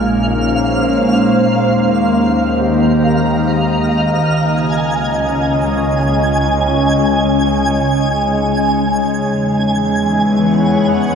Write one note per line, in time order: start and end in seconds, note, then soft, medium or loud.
0.00 1.65 A#1 medium
0.00 1.70 A#2 medium
0.00 4.22 G#3 medium
0.00 5.35 A#3 loud
0.00 2.72 C#4 medium
0.00 4.23 D#4 medium
0.00 0.18 F4 medium
0.00 2.72 C5 medium
0.00 4.25 F5 medium
0.00 0.18 G#5 medium
0.11 2.72 F5 medium
1.70 4.19 D#2 medium
1.70 4.23 D#3 medium
1.94 4.24 G4 medium
2.33 6.04 A#5 medium
2.78 10.24 D#5 medium
4.22 9.26 C#2 medium
4.22 9.29 C#3 medium
4.22 11.15 G#3 medium
4.22 11.15 D#4 medium
4.26 11.15 G#5 medium
4.58 11.06 C#4 medium
4.81 11.15 G#3 medium
9.31 11.15 E2 medium
9.31 11.15 E3 medium
9.60 11.15 B3 loud
9.90 11.15 C#5 medium
10.04 11.15 F#5 medium